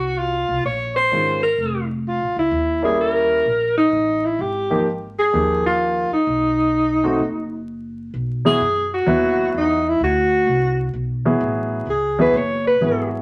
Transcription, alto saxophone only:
0.00 0.19 F#4 medium
0.18 0.65 F4 medium
0.65 0.94 C#5 medium
0.96 1.39 C5 medium
1.43 1.86 A#4 medium
2.08 2.35 F4 medium
2.39 2.81 E4 medium
2.84 2.99 G#4 medium
3.01 3.73 A#4 medium
3.77 4.26 D#4 medium
4.25 4.43 E4 medium
4.41 4.87 G4 medium
5.19 5.61 G#4 medium
5.66 6.09 F4 medium
6.13 7.64 D#4 medium
8.46 8.89 G#4 medium
8.94 9.51 F#4 medium
9.57 9.90 D#4 medium
9.88 10.03 E4 medium
10.04 10.92 F#4 medium
11.90 12.18 G#4 medium
12.21 12.38 B4 medium
12.37 12.66 C#5 medium
12.67 13.10 B4 medium

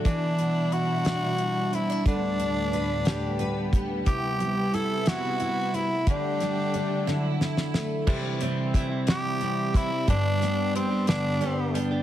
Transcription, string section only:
0.00 4.03 D4 medium
0.05 2.04 B2 medium
0.05 6.03 G3 medium
0.05 2.04 E4 medium
2.05 4.04 D2 medium
2.05 4.04 A2 medium
2.05 6.03 B3 medium
4.07 6.05 C3 medium
4.07 6.05 E4 medium
6.07 8.05 D3 medium
6.07 7.06 G3 medium
6.07 8.05 A3 medium
6.07 7.06 G4 medium
7.07 8.07 F#3 medium
7.07 8.07 E4 medium

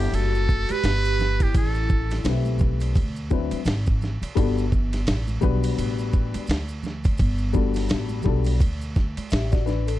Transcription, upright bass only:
0.00 0.12 G1 medium
0.13 0.67 F#1 medium
0.70 muted upright bass stroke soft
0.84 1.51 G1 medium
1.55 2.22 A1 loud
2.25 2.92 B1 medium
2.96 3.49 D2 loud
3.52 muted upright bass stroke soft
3.66 4.19 G#1 medium
4.22 muted upright bass stroke soft
4.37 5.04 G1 loud
5.07 5.41 A1 medium
5.43 5.77 B1 medium
5.78 6.31 A1 medium
6.35 muted upright bass stroke soft
6.49 7.16 D2 medium
7.20 7.87 G1 medium
7.90 8.24 A1 medium
8.26 8.59 B1 medium
8.61 9.14 D2 medium
9.17 muted upright bass stroke soft
9.32 9.99 A1 medium

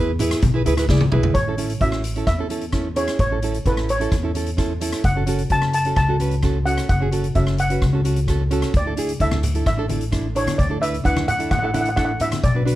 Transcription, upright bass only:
0.00 0.33 E2 medium
0.43 0.63 B1 medium
0.66 0.87 D2 medium
0.89 1.09 C#2 medium
1.12 1.33 B1 medium
1.35 1.75 A1 medium
1.81 2.21 A1 medium
2.27 3.07 E2 medium
3.19 3.59 A1 medium
3.66 4.06 A1 medium
4.12 4.92 E2 medium
5.04 5.44 F#1 medium
5.50 5.90 F#1 medium
5.97 6.77 C#2 medium
6.90 7.29 F#1 medium
7.36 7.76 F#1 medium
7.82 8.62 C#2 medium
8.74 9.14 D2 medium
9.20 9.60 D2 medium
9.67 10.46 A1 medium
10.59 10.99 D2 medium
11.05 11.45 D2 medium
11.51 12.31 A1 medium
12.44 12.75 B1 medium

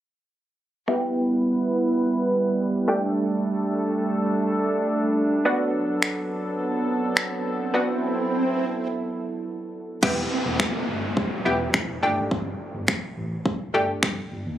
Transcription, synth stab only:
0.88 2.84 B3 medium
0.88 2.84 E4 medium
0.88 2.85 G4 medium
2.88 5.13 A3 medium
2.88 5.13 D4 medium
2.88 5.13 G4 medium
5.45 7.70 B3 medium
5.45 7.70 D4 medium
5.45 7.70 F#4 medium
7.74 9.99 B3 medium
7.74 9.99 D4 medium
7.74 9.99 F#4 medium
10.03 10.78 B3 medium
10.03 10.78 E4 medium
10.03 10.78 G4 loud
11.45 12.02 B3 medium
11.45 12.02 E4 medium
11.45 12.02 G4 medium
12.03 12.94 A3 medium
12.03 12.94 D4 medium
12.03 12.94 G4 loud
13.74 14.30 A3 medium
13.74 14.31 D4 medium
13.74 14.31 G4 medium

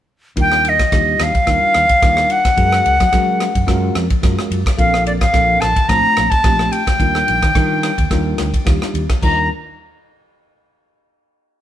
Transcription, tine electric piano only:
0.36 0.74 G3 medium
0.36 0.74 D4 medium
0.36 0.74 D#4 medium
0.36 0.74 F4 medium
0.36 0.74 A#4 medium
0.92 1.29 G3 medium
0.92 1.29 D4 medium
0.92 1.30 D#4 medium
0.92 1.30 F4 medium
0.92 1.30 G4 medium
1.46 1.84 G3 medium
1.46 1.84 D4 medium
1.46 1.84 D#4 medium
1.46 1.84 F4 medium
1.46 1.84 A#4 medium
2.02 2.39 G3 medium
2.02 2.39 D4 medium
2.02 2.40 D#4 medium
2.02 2.40 F4 medium
2.02 2.40 A#4 medium
2.56 2.94 G#3 medium
2.56 2.94 C#4 medium
2.56 2.95 F#4 medium
2.56 2.95 G#4 medium
2.56 2.95 A#4 medium
3.12 3.49 G#3 medium
3.12 3.50 C#4 medium
3.12 3.50 F#4 medium
3.12 3.50 G#4 medium
3.12 3.50 A#4 medium
3.67 4.04 G#3 medium
3.67 4.04 C#4 medium
3.67 4.04 F4 medium
3.67 4.05 F#4 medium
3.67 4.05 A#4 loud
4.22 4.60 G#3 medium
4.22 4.60 C#4 medium
4.22 4.60 F4 medium
4.22 4.60 F#4 medium
4.22 4.61 A#4 medium
4.78 5.15 C4 medium
4.78 5.15 D4 medium
4.78 5.15 F4 medium
4.78 5.15 A4 medium
4.78 5.16 A#4 medium
5.33 5.70 C4 medium
5.33 5.71 D4 medium
5.33 5.71 F4 medium
5.33 5.70 A4 medium
5.33 5.71 A#4 medium
5.89 6.26 A3 medium
5.89 6.26 C4 medium
5.89 6.26 D4 medium
5.89 6.26 F4 medium
5.89 6.27 C5 medium
6.44 6.81 A3 medium
6.44 6.82 C4 medium
6.44 6.82 D4 medium
6.44 6.82 F4 medium
6.44 6.82 G4 medium
7.00 7.37 G3 medium
7.00 7.37 D4 medium
7.00 7.37 D#4 medium
7.00 7.38 F4 medium
7.00 7.38 A#4 medium
7.55 7.92 G3 medium
7.55 7.92 D4 medium
7.55 7.93 D#4 medium
7.55 7.93 F4 medium
7.55 7.93 A#4 medium
8.11 8.48 G3 medium
8.11 8.48 D4 medium
8.11 8.48 D#4 medium
8.11 8.48 F4 medium
8.11 8.48 A#4 medium
8.65 9.03 G3 medium
8.65 9.04 D4 medium
8.65 9.04 D#4 medium
8.65 9.04 F4 medium
8.65 9.04 G4 medium
9.23 9.49 G3 medium
9.23 9.49 D4 medium
9.23 9.49 D#4 medium
9.23 9.49 F4 medium
9.23 9.49 A#4 medium

